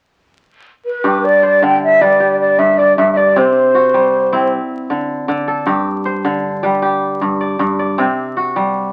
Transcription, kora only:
0, 0, Header, 1, 2, 480
1, 0, Start_track
1, 0, Key_signature, 1, "major"
1, 0, Tempo, 386026
1, 1291, Time_signature, 12, 3, 24, 8
1, 11098, End_track
2, 0, Start_track
2, 0, Title_t, "Kora"
2, 0, Program_c, 0, 46
2, 1293, Note_on_c, 0, 43, 71
2, 1296, Note_on_c, 0, 67, 58
2, 1777, Note_on_c, 0, 72, 57
2, 2020, Note_on_c, 0, 50, 78
2, 2501, Note_on_c, 0, 55, 71
2, 2502, Note_on_c, 0, 71, 61
2, 2576, Note_off_c, 0, 72, 0
2, 2732, Note_off_c, 0, 67, 0
2, 2737, Note_on_c, 0, 67, 61
2, 3200, Note_off_c, 0, 43, 0
2, 3215, Note_on_c, 0, 43, 65
2, 3468, Note_on_c, 0, 74, 56
2, 3692, Note_off_c, 0, 43, 0
2, 3706, Note_on_c, 0, 43, 75
2, 3939, Note_off_c, 0, 74, 0
2, 3944, Note_on_c, 0, 74, 60
2, 4030, Note_off_c, 0, 71, 0
2, 4181, Note_on_c, 0, 48, 76
2, 4181, Note_on_c, 0, 60, 58
2, 4232, Note_off_c, 0, 43, 0
2, 4232, Note_off_c, 0, 50, 0
2, 4232, Note_off_c, 0, 55, 0
2, 4494, Note_off_c, 0, 67, 0
2, 4658, Note_on_c, 0, 66, 56
2, 4900, Note_on_c, 0, 55, 72
2, 5322, Note_off_c, 0, 74, 0
2, 5374, Note_off_c, 0, 60, 0
2, 5379, Note_on_c, 0, 60, 72
2, 5380, Note_on_c, 0, 64, 60
2, 5672, Note_off_c, 0, 48, 0
2, 5672, Note_off_c, 0, 55, 0
2, 6093, Note_on_c, 0, 50, 68
2, 6476, Note_off_c, 0, 66, 0
2, 6554, Note_off_c, 0, 50, 0
2, 6569, Note_on_c, 0, 50, 72
2, 6810, Note_on_c, 0, 69, 57
2, 7043, Note_on_c, 0, 43, 73
2, 7044, Note_on_c, 0, 67, 61
2, 7112, Note_off_c, 0, 50, 0
2, 7329, Note_off_c, 0, 64, 0
2, 7528, Note_on_c, 0, 72, 62
2, 7617, Note_off_c, 0, 60, 0
2, 7766, Note_on_c, 0, 50, 82
2, 8244, Note_on_c, 0, 55, 70
2, 8248, Note_on_c, 0, 71, 57
2, 8322, Note_off_c, 0, 72, 0
2, 8448, Note_off_c, 0, 69, 0
2, 8479, Note_off_c, 0, 67, 0
2, 8484, Note_on_c, 0, 67, 65
2, 8955, Note_off_c, 0, 43, 0
2, 8970, Note_on_c, 0, 43, 67
2, 9210, Note_on_c, 0, 74, 57
2, 9427, Note_off_c, 0, 43, 0
2, 9442, Note_on_c, 0, 43, 73
2, 9685, Note_off_c, 0, 74, 0
2, 9690, Note_on_c, 0, 74, 56
2, 9776, Note_off_c, 0, 71, 0
2, 9923, Note_on_c, 0, 48, 76
2, 9925, Note_on_c, 0, 60, 62
2, 9991, Note_off_c, 0, 43, 0
2, 9991, Note_off_c, 0, 50, 0
2, 9991, Note_off_c, 0, 55, 0
2, 10240, Note_off_c, 0, 67, 0
2, 10404, Note_on_c, 0, 66, 57
2, 10644, Note_on_c, 0, 55, 75
2, 11067, Note_off_c, 0, 74, 0
2, 11098, Note_off_c, 0, 48, 0
2, 11098, Note_off_c, 0, 55, 0
2, 11098, Note_off_c, 0, 60, 0
2, 11098, Note_off_c, 0, 66, 0
2, 11098, End_track
0, 0, End_of_file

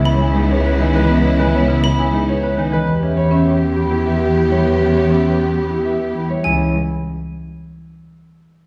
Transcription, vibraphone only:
0, 0, Header, 1, 2, 480
1, 0, Start_track
1, 0, Tempo, 594059
1, 882, Time_signature, 3, 2, 24, 8
1, 7004, End_track
2, 0, Start_track
2, 0, Title_t, "Vibraphone"
2, 0, Program_c, 0, 11
2, 53, Note_on_c, 0, 73, 66
2, 170, Note_on_c, 0, 80, 79
2, 201, Note_off_c, 0, 73, 0
2, 292, Note_on_c, 0, 68, 63
2, 320, Note_off_c, 0, 80, 0
2, 415, Note_on_c, 0, 71, 67
2, 441, Note_off_c, 0, 68, 0
2, 534, Note_on_c, 0, 73, 85
2, 562, Note_off_c, 0, 71, 0
2, 653, Note_on_c, 0, 80, 66
2, 682, Note_off_c, 0, 73, 0
2, 767, Note_on_c, 0, 75, 61
2, 801, Note_off_c, 0, 80, 0
2, 887, Note_on_c, 0, 71, 88
2, 919, Note_off_c, 0, 75, 0
2, 1008, Note_on_c, 0, 75, 66
2, 1039, Note_off_c, 0, 71, 0
2, 1125, Note_on_c, 0, 80, 73
2, 1159, Note_off_c, 0, 75, 0
2, 1245, Note_on_c, 0, 73, 79
2, 1278, Note_off_c, 0, 80, 0
2, 1365, Note_on_c, 0, 76, 63
2, 1399, Note_off_c, 0, 73, 0
2, 1482, Note_on_c, 0, 73, 68
2, 1518, Note_off_c, 0, 76, 0
2, 1603, Note_on_c, 0, 80, 83
2, 1637, Note_off_c, 0, 73, 0
2, 1726, Note_on_c, 0, 68, 60
2, 1758, Note_off_c, 0, 80, 0
2, 1850, Note_on_c, 0, 71, 62
2, 1879, Note_off_c, 0, 68, 0
2, 1964, Note_on_c, 0, 73, 74
2, 2000, Note_off_c, 0, 71, 0
2, 2087, Note_on_c, 0, 80, 66
2, 2118, Note_off_c, 0, 73, 0
2, 2202, Note_on_c, 0, 75, 62
2, 2239, Note_off_c, 0, 80, 0
2, 2321, Note_on_c, 0, 71, 79
2, 2357, Note_off_c, 0, 75, 0
2, 2448, Note_on_c, 0, 76, 58
2, 2477, Note_off_c, 0, 71, 0
2, 2574, Note_on_c, 0, 83, 61
2, 2600, Note_off_c, 0, 76, 0
2, 2685, Note_on_c, 0, 73, 73
2, 2722, Note_off_c, 0, 83, 0
2, 2808, Note_on_c, 0, 79, 57
2, 2839, Note_off_c, 0, 73, 0
2, 2960, Note_off_c, 0, 79, 0
2, 3046, Note_on_c, 0, 83, 72
2, 3168, Note_on_c, 0, 67, 53
2, 3199, Note_off_c, 0, 83, 0
2, 3287, Note_on_c, 0, 71, 51
2, 3320, Note_off_c, 0, 67, 0
2, 3439, Note_off_c, 0, 71, 0
2, 3524, Note_on_c, 0, 83, 51
2, 3643, Note_on_c, 0, 76, 50
2, 3678, Note_off_c, 0, 83, 0
2, 3763, Note_on_c, 0, 71, 68
2, 3798, Note_off_c, 0, 76, 0
2, 3884, Note_on_c, 0, 76, 54
2, 3918, Note_off_c, 0, 71, 0
2, 4003, Note_on_c, 0, 83, 52
2, 4038, Note_off_c, 0, 76, 0
2, 4125, Note_on_c, 0, 73, 63
2, 4158, Note_off_c, 0, 83, 0
2, 4245, Note_on_c, 0, 79, 54
2, 4278, Note_off_c, 0, 73, 0
2, 4399, Note_off_c, 0, 79, 0
2, 4482, Note_on_c, 0, 83, 55
2, 4602, Note_on_c, 0, 67, 45
2, 4638, Note_off_c, 0, 83, 0
2, 4723, Note_on_c, 0, 71, 46
2, 4758, Note_off_c, 0, 67, 0
2, 4878, Note_off_c, 0, 71, 0
2, 4957, Note_on_c, 0, 83, 45
2, 5082, Note_on_c, 0, 76, 46
2, 5116, Note_off_c, 0, 83, 0
2, 5204, Note_on_c, 0, 73, 64
2, 5238, Note_off_c, 0, 76, 0
2, 5426, Note_off_c, 0, 73, 0
2, 7004, End_track
0, 0, End_of_file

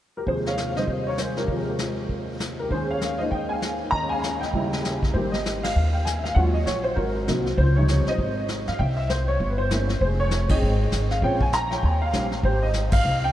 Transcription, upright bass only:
0, 0, Header, 1, 3, 480
1, 0, Start_track
1, 0, Key_signature, -4, "major"
1, 0, Tempo, 304105
1, 429, Time_signature, 4, 2, 24, 8
1, 21024, End_track
2, 0, Start_track
2, 0, Title_t, "Upright bass"
2, 0, Program_c, 0, 32
2, 8120, Note_on_c, 0, 32, 73
2, 9033, Note_off_c, 0, 32, 0
2, 9087, Note_on_c, 0, 39, 76
2, 9996, Note_off_c, 0, 39, 0
2, 10036, Note_on_c, 0, 39, 80
2, 10485, Note_off_c, 0, 39, 0
2, 10521, Note_on_c, 0, 34, 64
2, 10968, Note_off_c, 0, 34, 0
2, 10995, Note_on_c, 0, 32, 74
2, 11445, Note_off_c, 0, 32, 0
2, 11485, Note_on_c, 0, 36, 65
2, 11930, Note_off_c, 0, 36, 0
2, 11959, Note_on_c, 0, 37, 83
2, 12680, Note_off_c, 0, 37, 0
2, 12918, Note_on_c, 0, 32, 80
2, 13639, Note_off_c, 0, 32, 0
2, 13699, Note_on_c, 0, 43, 69
2, 13871, Note_off_c, 0, 43, 0
2, 13885, Note_on_c, 0, 36, 78
2, 14795, Note_off_c, 0, 36, 0
2, 14842, Note_on_c, 0, 31, 76
2, 15752, Note_off_c, 0, 31, 0
2, 15799, Note_on_c, 0, 29, 77
2, 16710, Note_off_c, 0, 29, 0
2, 16762, Note_on_c, 0, 32, 82
2, 17206, Note_off_c, 0, 32, 0
2, 17236, Note_on_c, 0, 32, 72
2, 17683, Note_off_c, 0, 32, 0
2, 17712, Note_on_c, 0, 34, 75
2, 18625, Note_off_c, 0, 34, 0
2, 18673, Note_on_c, 0, 39, 78
2, 19120, Note_off_c, 0, 39, 0
2, 19155, Note_on_c, 0, 34, 67
2, 19600, Note_off_c, 0, 34, 0
2, 19626, Note_on_c, 0, 32, 84
2, 20539, Note_off_c, 0, 32, 0
2, 20594, Note_on_c, 0, 36, 76
2, 21024, Note_off_c, 0, 36, 0
2, 21024, End_track
3, 0, Start_track
3, 0, Title_t, "Muted upright bass strokes"
3, 12741, Note_on_c, 9, 29, 33
3, 12898, Note_off_c, 9, 29, 0
3, 21024, End_track
0, 0, End_of_file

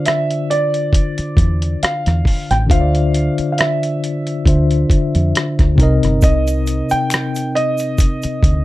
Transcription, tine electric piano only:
0, 0, Header, 1, 2, 480
1, 0, Start_track
1, 0, Tempo, 882353
1, 1468, Time_signature, 4, 2, 24, 8
1, 4704, End_track
2, 0, Start_track
2, 0, Title_t, "Tine electric piano"
2, 0, Program_c, 0, 4
2, 0, Control_c, 0, 64, 127
2, 0, Note_on_c, 0, 50, 60
2, 0, Note_on_c, 0, 62, 49
2, 0, Note_on_c, 0, 65, 50
2, 0, Note_on_c, 0, 72, 51
2, 0, Note_on_c, 0, 74, 60
2, 1439, Note_off_c, 0, 50, 0
2, 1444, Note_off_c, 0, 62, 0
2, 1451, Note_on_c, 0, 50, 60
2, 1454, Note_off_c, 0, 72, 0
2, 1459, Note_off_c, 0, 74, 0
2, 1461, Note_on_c, 0, 62, 49
2, 1465, Note_off_c, 0, 65, 0
2, 1471, Note_on_c, 0, 65, 54
2, 1481, Note_on_c, 0, 72, 54
2, 1492, Note_on_c, 0, 76, 49
2, 1518, Note_off_c, 0, 76, 0
2, 1527, Note_on_c, 0, 74, 58
2, 2400, Note_off_c, 0, 50, 0
2, 2405, Note_off_c, 0, 62, 0
2, 2410, Note_off_c, 0, 65, 0
2, 2416, Note_off_c, 0, 72, 0
2, 2420, Note_on_c, 0, 50, 46
2, 2425, Note_on_c, 0, 62, 46
2, 2431, Note_on_c, 0, 65, 40
2, 2435, Note_on_c, 0, 72, 44
2, 2439, Note_off_c, 0, 74, 0
2, 2440, Note_on_c, 0, 76, 50
2, 3132, Note_on_c, 0, 48, 66
2, 3142, Note_on_c, 0, 60, 64
2, 3144, Note_off_c, 0, 50, 0
2, 3147, Note_off_c, 0, 62, 0
2, 3149, Note_off_c, 0, 65, 0
2, 3150, Note_on_c, 0, 63, 68
2, 3152, Note_off_c, 0, 72, 0
2, 3154, Note_off_c, 0, 76, 0
2, 3155, Control_c, 0, 64, 0
2, 3162, Note_on_c, 0, 70, 57
2, 3172, Note_on_c, 0, 75, 73
2, 3246, Control_c, 0, 64, 127
2, 4704, Note_off_c, 0, 48, 0
2, 4704, Note_off_c, 0, 60, 0
2, 4704, Note_off_c, 0, 63, 0
2, 4704, Note_off_c, 0, 70, 0
2, 4704, Note_off_c, 0, 75, 0
2, 4704, End_track
0, 0, End_of_file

